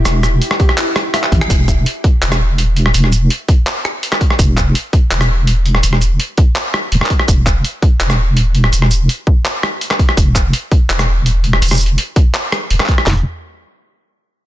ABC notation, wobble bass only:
X:1
M:4/4
L:1/16
Q:1/4=166
K:Clyd
V:1 name="Wobble bass" clef=bass
E,,,4 z8 z2 A,,,2 | E,,,4 z4 E,,,8 | E,,,4 z12 | E,,,4 z4 E,,,8 |
E,,,4 z8 E,,, z3 | E,,,4 z4 E,,,8 | E,,,4 z12 | E,,,4 z4 E,,,8 |
E,,,4 z8 E,,, z3 | E,,,2 z12 z2 |]